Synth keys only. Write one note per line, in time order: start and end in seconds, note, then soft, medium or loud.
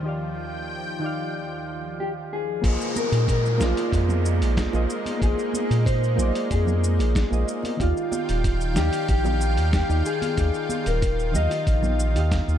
0.00 0.03 D#3 medium
0.00 0.97 D#3 medium
0.00 0.04 D#4 medium
0.00 0.06 G4 medium
0.00 0.07 D5 medium
0.00 0.09 F5 medium
0.04 0.98 D#4 medium
0.04 0.99 G4 medium
0.04 1.00 D5 medium
0.09 1.00 F5 medium
0.99 2.59 D#3 medium
0.99 2.59 D#4 medium
0.99 2.60 G4 medium
1.04 2.61 D5 medium
1.04 2.62 F5 loud
2.62 3.56 A#3 medium
2.62 3.56 F4 medium
2.62 3.57 G#4 medium
2.66 3.58 C5 medium
2.66 3.59 D#5 medium
3.58 4.69 A#3 medium
3.58 4.70 F4 medium
3.58 4.71 G#4 medium
3.62 4.72 C5 medium
3.62 4.72 D5 loud
4.73 5.18 A#3 medium
4.73 5.18 F4 medium
4.73 5.19 G#4 medium
4.73 5.19 C5 medium
4.73 5.19 D#5 medium
5.19 6.14 A#3 medium
5.19 6.14 F4 medium
5.19 6.15 G#4 medium
5.24 6.16 C5 medium
5.24 6.17 D#5 medium
6.16 7.27 A#3 loud
6.16 7.28 F4 medium
6.16 7.29 G#4 medium
6.21 7.30 C5 medium
6.21 7.31 D5 loud
7.30 7.75 A#3 medium
7.30 7.76 F4 medium
7.30 7.76 G#4 medium
7.30 7.77 C5 medium
7.30 7.77 D#5 medium
7.77 8.72 D#3 medium
7.77 8.72 D#4 medium
7.77 8.73 G4 medium
7.82 8.74 D5 medium
7.82 8.75 F5 medium
8.74 9.86 D#3 loud
8.74 9.87 D#4 medium
8.74 9.87 G4 medium
8.79 9.88 D5 medium
8.79 9.89 F5 loud
9.89 10.34 D#3 medium
9.89 10.34 D#4 medium
9.89 10.35 G4 medium
9.89 10.35 D5 medium
9.89 10.35 F5 medium
10.35 11.30 D#3 medium
10.35 11.31 D#4 medium
10.35 11.32 G5 medium
10.40 11.32 D5 medium
10.40 11.33 F5 medium
11.32 12.11 D#3 medium
11.32 12.12 D#4 medium
11.32 12.13 G4 medium
11.37 12.14 D#5 medium
11.37 12.14 F5 loud
12.14 12.58 D#3 medium
12.14 12.58 D#4 medium
12.14 12.58 G4 medium
12.19 12.58 D#5 medium
12.19 12.58 F5 loud